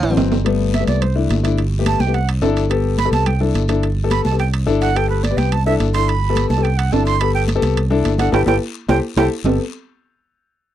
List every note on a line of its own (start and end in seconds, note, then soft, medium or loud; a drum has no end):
0.00 0.16 A1 medium
0.00 0.14 G3 loud
0.00 0.14 D5 medium
0.00 high conga soft
0.00 high timbale medium
0.10 0.35 E3 medium
0.10 0.35 F#3 medium
0.10 0.35 C4 loud
0.17 0.82 G1 medium
0.17 high conga medium
0.17 low timbale loud
0.17 short guiro medium
0.32 high conga medium
0.32 low timbale medium
0.32 short guiro medium
0.45 0.70 G3 medium
0.45 0.70 A3 medium
0.45 0.70 B3 loud
0.45 high conga soft
0.45 high timbale medium
0.45 long guiro medium
0.60 high conga soft
0.74 0.87 E5 medium
0.74 high conga medium
0.74 high timbale medium
0.74 short guiro medium
0.80 1.01 G3 medium
0.80 1.01 A3 medium
0.80 1.01 B3 medium
0.87 1.27 C2 medium
0.87 1.03 D5 medium
0.87 high conga medium
0.87 high timbale medium
0.87 short guiro medium
1.01 1.16 C5 medium
1.01 high conga soft
1.01 low conga medium
1.01 high timbale medium
1.01 long guiro medium
1.15 1.35 A3 medium
1.15 1.35 D4 medium
1.15 1.35 E4 medium
1.30 1.95 G1 loud
1.30 high conga medium
1.30 high timbale medium
1.30 short guiro medium
1.43 1.58 A3 medium
1.43 1.58 D4 medium
1.43 1.58 E4 loud
1.43 high conga medium
1.43 high timbale medium
1.43 short guiro medium
1.58 high conga soft
1.58 high timbale medium
1.58 long guiro medium
1.73 high conga soft
1.79 1.99 A3 medium
1.79 1.99 B3 medium
1.79 1.99 G4 medium
1.85 2.02 A5 loud
1.85 high conga medium
1.85 high timbale loud
1.85 short guiro medium
1.99 2.39 C2 medium
1.99 2.15 G5 loud
1.99 high conga loud
1.99 short guiro medium
2.07 2.14 A3 medium
2.07 2.14 B3 medium
2.07 2.14 G4 medium
2.14 2.28 F#5 medium
2.14 high conga soft
2.14 high timbale medium
2.14 long guiro medium
2.28 high conga soft
2.28 high timbale loud
2.41 3.07 G1 loud
2.41 2.62 D4 loud
2.41 2.62 E4 loud
2.41 2.62 A4 loud
2.41 high conga soft
2.41 low timbale medium
2.41 short guiro medium
2.56 high conga soft
2.56 high timbale medium
2.56 short guiro medium
2.70 2.95 B3 medium
2.70 2.95 G4 medium
2.70 2.95 A4 loud
2.70 high conga soft
2.70 high timbale medium
2.70 long guiro medium
2.85 high conga soft
2.98 3.12 B5 loud
2.98 high conga loud
2.98 high timbale medium
2.98 short guiro medium
3.05 3.27 B3 medium
3.05 3.27 G4 medium
3.05 3.27 A4 medium
3.11 3.51 C2 medium
3.11 3.28 A5 loud
3.11 high conga loud
3.11 high timbale medium
3.11 short guiro medium
3.26 3.41 G5 medium
3.26 high conga soft
3.26 low conga medium
3.26 high timbale medium
3.26 long guiro medium
3.40 3.60 D4 medium
3.40 3.61 E4 medium
3.40 3.61 A4 medium
3.40 high conga soft
3.40 low conga medium
3.54 4.19 G1 loud
3.54 high conga medium
3.54 high timbale medium
3.54 short guiro medium
3.68 3.83 D4 medium
3.68 3.83 E4 medium
3.68 3.83 A4 medium
3.68 high conga medium
3.68 high timbale medium
3.68 short guiro medium
3.83 high timbale medium
3.83 long guiro medium
3.97 high conga soft
4.04 4.24 B3 medium
4.04 4.24 G4 medium
4.04 4.24 A4 loud
4.10 4.24 B5 medium
4.10 high conga medium
4.10 high timbale loud
4.10 short guiro medium
4.25 4.64 C2 medium
4.25 4.38 A5 medium
4.25 high conga loud
4.25 short guiro medium
4.32 4.39 B3 medium
4.32 4.39 G4 medium
4.32 4.39 A4 medium
4.39 4.48 G5 medium
4.39 high conga soft
4.39 high timbale medium
4.39 long guiro medium
4.53 high conga soft
4.53 high timbale medium
4.67 5.32 G1 loud
4.67 4.87 D4 loud
4.67 4.87 E4 loud
4.67 4.87 A4 loud
4.67 high conga soft
4.67 short guiro medium
4.81 4.98 F#5 loud
4.81 high conga soft
4.81 high timbale medium
4.81 short guiro medium
4.95 5.20 B3 medium
4.95 5.20 G4 medium
4.95 5.20 A4 medium
4.95 5.09 G5 loud
4.95 high conga soft
4.95 high timbale medium
4.95 long guiro medium
5.10 5.25 B4 medium
5.10 high conga soft
5.23 5.39 D5 medium
5.23 high conga medium
5.23 high timbale medium
5.23 short guiro medium
5.31 5.52 B3 medium
5.31 5.52 G4 medium
5.31 5.52 B4 medium
5.37 5.77 C2 medium
5.37 5.54 G5 medium
5.37 high conga loud
5.37 high timbale medium
5.37 short guiro medium
5.52 5.66 A5 loud
5.52 high conga soft
5.52 low conga medium
5.52 high timbale medium
5.52 long guiro medium
5.66 5.86 D4 medium
5.66 5.86 E4 medium
5.66 5.86 A4 loud
5.66 5.75 E5 medium
5.66 high conga soft
5.80 6.45 G1 loud
5.80 high conga medium
5.80 high timbale medium
5.80 short guiro medium
5.94 6.09 D4 medium
5.94 6.08 E4 medium
5.94 6.08 A4 medium
5.94 6.10 C6 loud
5.94 high timbale medium
5.94 short guiro medium
6.08 6.49 B5 medium
6.08 high conga soft
6.08 high timbale medium
6.08 long guiro medium
6.22 high conga soft
6.29 6.49 B3 medium
6.29 6.49 G4 medium
6.29 6.49 A4 medium
6.36 high conga medium
6.36 high timbale loud
6.36 short guiro medium
6.49 6.89 C2 loud
6.49 6.65 A5 medium
6.49 high conga loud
6.49 short guiro medium
6.58 6.65 B3 medium
6.58 6.64 G4 medium
6.58 6.65 A4 medium
6.63 6.79 G5 medium
6.63 high conga soft
6.63 high timbale medium
6.63 long guiro medium
6.77 6.94 F#5 medium
6.77 high conga soft
6.77 high timbale medium
6.92 7.57 G1 loud
6.92 7.12 D4 medium
6.92 7.12 E4 medium
6.92 7.12 A4 medium
6.92 7.06 A5 medium
6.92 high conga soft
6.92 low timbale medium
6.92 short guiro medium
7.06 7.22 C6 loud
7.06 high conga soft
7.06 high timbale medium
7.06 short guiro medium
7.20 7.45 B3 medium
7.20 7.45 G4 medium
7.20 7.45 A4 medium
7.20 7.34 B5 loud
7.20 high conga soft
7.20 high timbale loud
7.20 long guiro medium
7.34 7.43 G5 medium
7.34 high conga soft
7.48 high conga medium
7.48 high timbale medium
7.48 short guiro medium
7.55 7.77 B3 medium
7.55 7.77 G4 medium
7.55 7.77 A4 loud
7.62 8.01 C2 medium
7.62 high conga loud
7.62 high timbale medium
7.62 short guiro medium
7.77 high conga soft
7.77 low conga medium
7.77 high timbale medium
7.77 long guiro medium
7.90 8.10 D4 loud
7.90 8.10 E4 loud
7.90 8.10 A4 loud
7.90 high conga soft
7.90 low conga medium
8.04 8.31 G1 loud
8.04 high conga medium
8.04 high timbale medium
8.04 short guiro medium
8.18 8.33 D4 medium
8.18 8.33 E4 medium
8.18 8.31 A4 loud
8.18 8.32 F#5 medium
8.18 high conga medium
8.18 high timbale medium
8.18 short guiro medium
8.32 8.43 G1 loud
8.32 8.42 G4 loud
8.32 8.41 A4 loud
8.32 8.41 B4 loud
8.32 8.42 G5 loud
8.32 high conga medium
8.32 high timbale loud
8.32 long guiro loud
8.46 8.57 G1 loud
8.46 8.55 G4 medium
8.46 8.55 A4 loud
8.46 8.55 B4 loud
8.46 8.56 G5 medium
8.46 high conga loud
8.46 high timbale loud
8.46 long guiro loud
8.88 8.99 C2 loud
8.88 8.98 G4 loud
8.88 8.98 A4 medium
8.88 8.98 C5 loud
8.88 8.98 G5 medium
8.88 high conga loud
8.88 high timbale loud
8.88 long guiro medium
9.16 9.27 C2 loud
9.16 9.26 G4 loud
9.16 9.26 A4 loud
9.16 9.26 C5 loud
9.16 9.26 G5 medium
9.16 high conga loud
9.16 high timbale loud
9.16 long guiro loud
9.44 9.58 G1 loud
9.44 9.58 B3 medium
9.44 9.58 G4 medium
9.44 9.58 A4 medium
9.44 low conga medium
9.44 low timbale loud
9.44 long guiro medium